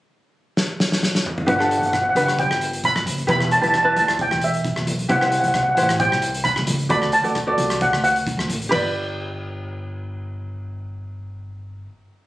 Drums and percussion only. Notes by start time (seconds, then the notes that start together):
0.57 snare
0.80 snare
0.92 snare
1.03 snare
1.15 snare
1.26 mid tom
1.38 mid tom
1.48 kick, closed hi-hat
1.60 cross-stick
1.71 closed hi-hat
1.83 closed hi-hat
1.93 kick, cross-stick, closed hi-hat
2.16 closed hi-hat
2.28 cross-stick, closed hi-hat
2.39 kick, closed hi-hat
2.51 cross-stick
2.61 closed hi-hat
2.73 closed hi-hat
2.84 kick, closed hi-hat
2.96 cross-stick
3.07 closed hi-hat
3.18 closed hi-hat
3.28 kick, closed hi-hat
3.40 cross-stick
3.51 closed hi-hat
3.63 closed hi-hat
3.74 kick, cross-stick, closed hi-hat
3.96 closed hi-hat
4.08 cross-stick, closed hi-hat
4.19 kick, closed hi-hat
4.31 cross-stick
4.42 closed hi-hat
4.54 closed hi-hat
4.64 kick, closed hi-hat
4.76 cross-stick
4.87 closed hi-hat
4.99 closed hi-hat
5.09 kick, closed hi-hat
5.21 cross-stick
5.32 closed hi-hat
5.44 closed hi-hat
5.54 kick, cross-stick, closed hi-hat
5.77 closed hi-hat
5.89 cross-stick, closed hi-hat
6.00 kick, closed hi-hat
6.12 cross-stick
6.22 closed hi-hat
6.34 closed hi-hat
6.45 kick, closed hi-hat
6.56 cross-stick
6.67 closed hi-hat
6.79 closed hi-hat
6.90 kick, closed hi-hat
7.02 cross-stick
7.12 closed hi-hat
7.24 closed hi-hat
7.35 kick, cross-stick, closed hi-hat
7.58 closed hi-hat
7.70 cross-stick, closed hi-hat
7.81 kick, closed hi-hat
7.93 cross-stick
8.04 closed hi-hat
8.16 closed hi-hat
8.27 kick, closed hi-hat
8.39 cross-stick
8.50 closed hi-hat
8.62 closed hi-hat
8.72 kick, crash